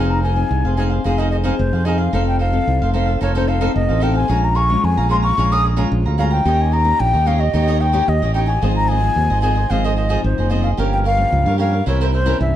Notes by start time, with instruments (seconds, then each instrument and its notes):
Already playing: fingered electric bass F1, nylon-string guitar F3 C4 D#4 G#4, cavaquinho D#4 G#4, flute G#5
0.00 cavaquinho C5 F5
0.10 flute A#5
0.23 cavaquinho D#4 G#4 C5 F5, flute G#5
0.36 nylon-string guitar C4 D#4 G#4
0.51 fingered electric bass C2, nylon-string guitar C3
0.65 fingered electric bass F1, cavaquinho G#4 C5 F5
0.77 nylon-string guitar C4 D#4 G#4, cavaquinho D#4 G#4 C5 F5, flute G#5
0.89 cavaquinho G#4 C5 F5
1.04 fingered electric bass F1, nylon-string guitar F3 C4 D#4 G#4, cavaquinho D#4 G#4 C5 F5, flute F5
1.18 cavaquinho D#4 G#4 C5 F5, flute D#5
1.31 cavaquinho D#4 G#4 C5 F5, flute D#5
1.44 nylon-string guitar C4 D#4 G#4, cavaquinho D#4 G#4 C5 F5
1.57 fingered electric bass F1, nylon-string guitar C3, flute C5
1.73 fingered electric bass F2, cavaquinho G#4 C5 F5
1.85 nylon-string guitar C4 D#4 G#4, cavaquinho D#4 G#4 C5 F5, flute D#5
1.98 cavaquinho G#4 C5 F5, flute F5
2.13 fingered electric bass F1, nylon-string guitar F3 C4 D#4 A4, cavaquinho D#4 A4 C5 F5
2.27 flute G5
2.39 cavaquinho D#4 A4 C5 F5, flute F5
2.52 nylon-string guitar C4 D#4 A4
2.67 fingered electric bass C2, nylon-string guitar C3
2.82 fingered electric bass F1, cavaquinho A4 C5 F5
2.93 nylon-string guitar C4 D#4 A4, cavaquinho D#4 A4 C5 F5, flute F5
3.06 cavaquinho A4 C5 F5
3.21 fingered electric bass F1, nylon-string guitar F3, cavaquinho D#4 A4 C5 F5, flute C#5
3.35 nylon-string guitar C4 D#4 A4, cavaquinho D#4 A4 C5 F5, flute C5
3.48 cavaquinho D#4 A4 C5 F5, flute F5
3.61 nylon-string guitar C4 D#4 A4, cavaquinho D#4 A4 C5 F5
3.75 fingered electric bass F1, nylon-string guitar C3, flute D#5
3.89 fingered electric bass A1, cavaquinho A4 C5 F5
4.00 nylon-string guitar C4 D#4 A4, cavaquinho D#4 A4 C5 F5, flute G5
4.14 cavaquinho A4 C5 F5, flute G#5
4.28 fingered electric bass A#1, nylon-string guitar A#2 G#3 C#4 F4, cavaquinho G#4 C#5 F5 A#5
4.44 flute A#5
4.55 cavaquinho G#4 C#5 F5 A#5, flute C#6
4.69 nylon-string guitar G#3 C#4 F4
4.84 fingered electric bass F2, nylon-string guitar F2, flute G#5
4.97 fingered electric bass A#1, cavaquinho C#5 F5 A#5
5.09 nylon-string guitar G#3 C#4 F4, cavaquinho G#4 C#5 F5 A#5, flute C6
5.22 cavaquinho C#5 F5 A#5, flute C#6
5.37 fingered electric bass A#1, nylon-string guitar A#2 G#3 C#4 F4, cavaquinho G#4 C#5 F5 A#5
5.51 cavaquinho G#4 C#5 F5 A#5, flute D#6
5.64 cavaquinho G#4 C#5 F5 A#5
5.76 nylon-string guitar G#3 C#4 F4, cavaquinho G#4 C#5 F5 A#5
5.92 fingered electric bass A#1, nylon-string guitar F2
6.05 fingered electric bass D2, cavaquinho C#5 F5 A#5
6.18 nylon-string guitar G#3 C#4 F4, cavaquinho G#4 C#5 F5 A#5, flute F5
6.30 cavaquinho C#5 F5 A#5, flute G5
6.45 fingered electric bass D#2, nylon-string guitar D#3 A#3 C#4 G4, cavaquinho D#4 G4 C#5 D#5
6.61 flute G#5
6.71 cavaquinho D#4 G4 C#5 D#5, flute A#5
6.84 nylon-string guitar A#3 C#4 G4
7.00 fingered electric bass A#1, nylon-string guitar A#2, flute G5
7.13 fingered electric bass D#2, cavaquinho G4 C#5 D#5
7.26 nylon-string guitar A#3 C#4 G4, cavaquinho D#4 G4 C#5 D#5, flute F5
7.38 cavaquinho G4 C#5 D#5, flute D#5
7.53 fingered electric bass D#2, nylon-string guitar D#3 A#3 C#4 G4, cavaquinho D#4 G4 C#5 D#5
7.68 cavaquinho D#4 G4 C#5 D#5
7.80 cavaquinho D#4 G4 C#5 D#5, flute G5
7.93 nylon-string guitar A#3 C#4 G4, cavaquinho D#4 G4 C#5 D#5
8.08 fingered electric bass D#2, flute D#5
8.22 fingered electric bass A1, nylon-string guitar A#3 C#4 G4, cavaquinho G4 C#5 D#5
8.34 cavaquinho D#4 G4 C#5 D#5, flute G5
8.46 cavaquinho G4 C#5 D#5, flute G#5
8.62 fingered electric bass G#1, nylon-string guitar G#2 F3 C4 D#4, cavaquinho F4 G#4 C5 D#5
8.76 flute A#5
8.88 cavaquinho F4 G#4 C5 D#5, flute G#5
9.01 nylon-string guitar F3 C4 D#4
9.16 fingered electric bass D#2, nylon-string guitar D#3
9.30 fingered electric bass G#1, cavaquinho G#4 C5 D#5
9.42 nylon-string guitar F3 C4 D#4, cavaquinho F4 G#4 C5 D#5, flute G#5
9.55 cavaquinho G#4 C5 D#5
9.70 fingered electric bass G#1, nylon-string guitar G#2 F3 C4 D#4, cavaquinho F4 G#4 C5 D#5, flute F5
9.84 cavaquinho F4 G#4 C5 D#5, flute D#5
9.96 cavaquinho F4 G#4 C5 D#5, flute D#5
10.09 nylon-string guitar F3 C4 D#4, cavaquinho F4 G#4 C5 D#5
10.24 fingered electric bass G#1, nylon-string guitar D#3, flute C5
10.38 fingered electric bass F#1, cavaquinho G#4 C5 D#5
10.50 nylon-string guitar F3 C4 D#4, cavaquinho F4 G#4 C5 D#5, flute D#5
10.62 cavaquinho G#4 C5 D#5, flute F5
10.77 fingered electric bass G1, nylon-string guitar G2 F3 A#3 C#4, cavaquinho G4 A#4 C#5 F5
10.93 flute G5
11.04 cavaquinho G4 A#4 C#5 F5, flute F5
11.17 nylon-string guitar F3 A#3 C#4
11.32 fingered electric bass C#2, nylon-string guitar G2
11.46 fingered electric bass G2, cavaquinho A#4 C#5 F5
11.58 nylon-string guitar F3 A#3 C#4, cavaquinho G4 A#4 C#5 F5, flute F5
11.72 cavaquinho A#4 C#5 F5
11.86 fingered electric bass C2, nylon-string guitar C3 E3 A#3 C#4, cavaquinho E4 A#4 C5 E5, flute C#5
12.01 cavaquinho E4 A#4 C5 E5, flute C5
12.12 cavaquinho E4 A#4 C5 E5, flute C5
12.26 nylon-string guitar E3 A#3 C#4, cavaquinho E4 A#4 C5 E5
12.40 fingered electric bass C2, nylon-string guitar G2, flute E5